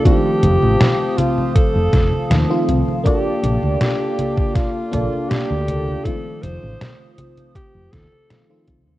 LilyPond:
<<
  \new Staff \with { instrumentName = "Ambient pad" } { \time 4/4 \key f \mixolydian \tempo 4 = 80 << { <c'' ees'''>1 | <bes d'''>1 | <c'' ees'''>1 | } \\ { <f'' a''>1~ | <f'' a''>1~ | <f'' a''>1 | } >> }
  \new Staff \with { instrumentName = "Alto saxophone" } { \time 4/4 \key f \mixolydian g'4. f'8 a'4. r8 | g'4 g'4 f'4 g'4 | a'8 c''4 r8 g'8 a'4 r8 | }
  \new Staff \with { instrumentName = "FM electric piano" } { \time 4/4 \key f \mixolydian <ees f a c' f'>2~ <ees f a c' f'>8. r16 <ees f a c' f'>16 <ees f a c' f'>8. | <bes d' f' a' d''>2~ <bes d' f' a' d''>8 <bes d' f' a' d''>4. | <ees f a c' f'>2~ <ees f a c' f'>8. r16 <ees f a c' f'>16 <ees f a c' f'>8. | }
  \new Staff \with { instrumentName = "Fretless electric bass" } { \clef bass \time 4/4 \key f \mixolydian r8 f,,16 a,,16 r4 r16 f,,16 f,,16 r16 ees,16 r16 c,16 r16 | r8 bes,,16 d,16 r4. bes,,16 r8 d,8 r16 | r8 f,,16 a,,16 r4 r16 f,,16 ees,16 r8. c,16 ees,16 | }
  \new DrumStaff \with { instrumentName = "Drums" } \drummode { \time 4/4 <cgho hh bd>8 <cgho hh>16 cgho16 <cgho hh sn>8 <cgho hh>16 cgho16 <cgho hh bd>8 <cgho hh bd sn>16 cgho16 <cgho hh sn>8 <cgho hh>16 cgho16 | <cgho hh bd>8 <cgho hh>16 cgho16 <cgho hh sn>8 <cgho hh>16 <cgho bd>16 <hh bd sn>8 <cgho hh bd>16 cgho16 <cgho hh sn>8 <cgho hh>16 cgho16 | <cgho hh bd>8 <cgho hh>16 cgho16 <cgho hh sn>8 <cgho hh>16 <cgho hh>16 <cgho hh bd>8 <cgho hh bd sn>16 cgho16 <cgho hh sn>8 <cgho hh bd>16 cgho16 | }
>>